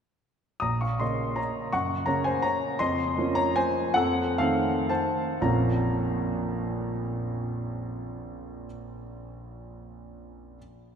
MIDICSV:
0, 0, Header, 1, 2, 480
1, 0, Start_track
1, 0, Key_signature, -5, "minor"
1, 0, Tempo, 382409
1, 777, Time_signature, 3, 2, 24, 8
1, 1734, Tempo, 357143
1, 4134, Tempo, 405954
1, 5574, Tempo, 505476
1, 9414, Tempo, 482703
1, 11925, End_track
2, 0, Start_track
2, 0, Title_t, "Grand piano"
2, 0, Program_c, 0, 0
2, 751, Note_on_c, 0, 87, 65
2, 772, Note_on_c, 0, 34, 41
2, 779, Note_on_c, 0, 82, 54
2, 1005, Note_off_c, 0, 82, 0
2, 1008, Note_off_c, 0, 87, 0
2, 1015, Note_on_c, 0, 85, 50
2, 1028, Note_on_c, 0, 77, 37
2, 1065, Control_c, 0, 64, 127
2, 1249, Note_off_c, 0, 34, 0
2, 1249, Note_on_c, 0, 84, 60
2, 1253, Note_off_c, 0, 77, 0
2, 1257, Note_on_c, 0, 49, 29
2, 1264, Note_off_c, 0, 85, 0
2, 1268, Note_on_c, 0, 58, 30
2, 1268, Note_on_c, 0, 61, 34
2, 1268, Note_on_c, 0, 75, 48
2, 1702, Note_off_c, 0, 75, 0
2, 1705, Note_on_c, 0, 82, 61
2, 1715, Note_on_c, 0, 73, 47
2, 1725, Note_off_c, 0, 84, 0
2, 1749, Control_c, 0, 64, 0
2, 2150, Note_off_c, 0, 49, 0
2, 2155, Note_off_c, 0, 58, 0
2, 2155, Note_off_c, 0, 61, 0
2, 2164, Note_off_c, 0, 73, 0
2, 2193, Note_off_c, 0, 82, 0
2, 2196, Note_on_c, 0, 85, 73
2, 2203, Note_on_c, 0, 42, 46
2, 2204, Note_on_c, 0, 78, 51
2, 2462, Control_c, 0, 64, 127
2, 2634, Note_off_c, 0, 78, 0
2, 2642, Note_on_c, 0, 82, 71
2, 2652, Note_off_c, 0, 42, 0
2, 2657, Note_on_c, 0, 58, 36
2, 2657, Note_on_c, 0, 73, 57
2, 2660, Note_on_c, 0, 49, 37
2, 2662, Note_off_c, 0, 85, 0
2, 2672, Note_on_c, 0, 61, 43
2, 2881, Note_off_c, 0, 73, 0
2, 2890, Note_off_c, 0, 82, 0
2, 2893, Note_on_c, 0, 80, 69
2, 2910, Note_on_c, 0, 72, 54
2, 3134, Note_off_c, 0, 72, 0
2, 3136, Note_on_c, 0, 82, 76
2, 3142, Note_off_c, 0, 80, 0
2, 3152, Note_on_c, 0, 73, 54
2, 3158, Control_c, 0, 64, 0
2, 3573, Note_off_c, 0, 58, 0
2, 3575, Note_off_c, 0, 49, 0
2, 3580, Note_off_c, 0, 61, 0
2, 3601, Note_off_c, 0, 73, 0
2, 3627, Note_off_c, 0, 82, 0
2, 3630, Note_on_c, 0, 84, 85
2, 3645, Note_on_c, 0, 41, 54
2, 3645, Note_on_c, 0, 75, 63
2, 3856, Control_c, 0, 64, 127
2, 4126, Note_off_c, 0, 41, 0
2, 4150, Note_on_c, 0, 58, 41
2, 4153, Note_on_c, 0, 53, 45
2, 4161, Note_on_c, 0, 61, 47
2, 4325, Note_off_c, 0, 75, 0
2, 4352, Note_on_c, 0, 82, 85
2, 4363, Note_on_c, 0, 73, 57
2, 4365, Note_off_c, 0, 84, 0
2, 4584, Note_off_c, 0, 73, 0
2, 4595, Note_on_c, 0, 80, 82
2, 4596, Note_off_c, 0, 82, 0
2, 4603, Note_on_c, 0, 72, 60
2, 4620, Control_c, 0, 64, 0
2, 5030, Note_off_c, 0, 58, 0
2, 5031, Note_off_c, 0, 53, 0
2, 5035, Note_off_c, 0, 61, 0
2, 5037, Note_off_c, 0, 72, 0
2, 5047, Note_on_c, 0, 78, 80
2, 5065, Note_off_c, 0, 80, 0
2, 5068, Note_on_c, 0, 69, 62
2, 5071, Note_on_c, 0, 41, 56
2, 5352, Control_c, 0, 64, 127
2, 5539, Note_off_c, 0, 69, 0
2, 5561, Note_off_c, 0, 41, 0
2, 5564, Note_off_c, 0, 78, 0
2, 5572, Note_on_c, 0, 77, 73
2, 5583, Note_on_c, 0, 51, 44
2, 5585, Note_on_c, 0, 69, 58
2, 5587, Note_on_c, 0, 57, 44
2, 5590, Note_on_c, 0, 60, 46
2, 6021, Note_off_c, 0, 69, 0
2, 6048, Note_off_c, 0, 77, 0
2, 6056, Note_on_c, 0, 81, 70
2, 6062, Note_on_c, 0, 72, 55
2, 6069, Control_c, 0, 64, 0
2, 6524, Note_off_c, 0, 51, 0
2, 6526, Note_off_c, 0, 57, 0
2, 6527, Note_off_c, 0, 60, 0
2, 6529, Note_off_c, 0, 72, 0
2, 6549, Note_on_c, 0, 34, 57
2, 6554, Note_on_c, 0, 41, 45
2, 6556, Note_on_c, 0, 82, 59
2, 6557, Note_on_c, 0, 53, 47
2, 6559, Note_on_c, 0, 61, 44
2, 6561, Note_on_c, 0, 65, 45
2, 6562, Note_off_c, 0, 81, 0
2, 6562, Note_on_c, 0, 58, 45
2, 6799, Control_c, 0, 64, 127
2, 9629, Note_off_c, 0, 34, 0
2, 9634, Note_off_c, 0, 41, 0
2, 9636, Note_off_c, 0, 82, 0
2, 9637, Note_off_c, 0, 53, 0
2, 9640, Note_off_c, 0, 61, 0
2, 9642, Note_off_c, 0, 58, 0
2, 9642, Note_off_c, 0, 65, 0
2, 11553, Control_c, 0, 64, 0
2, 11925, End_track
0, 0, End_of_file